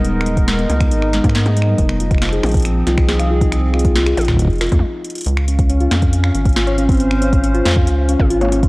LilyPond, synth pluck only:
\new Staff \with { instrumentName = "Synth pluck" } { \time 4/4 \key des \major \tempo 4 = 138 r8 aes16 r16 aes16 ces'16 r4 aes16 r16 ces'16 aes'16 aes16 g16 | r8 f'16 f'16 f'16 aes'16 f'16 r8. f'16 r16 aes'16 f''16 f'16 ees'16 | r8 f'16 f'16 f'16 aes'16 f'16 r8. f'16 r4 r16 | r8 des'16 des'16 des'16 f'16 r4 des'16 r16 f'16 des''16 des'16 c'16 |
r8 des'16 des'16 des'16 f'16 des'16 r8. des'16 r16 f'16 des''16 des'16 c'16 | }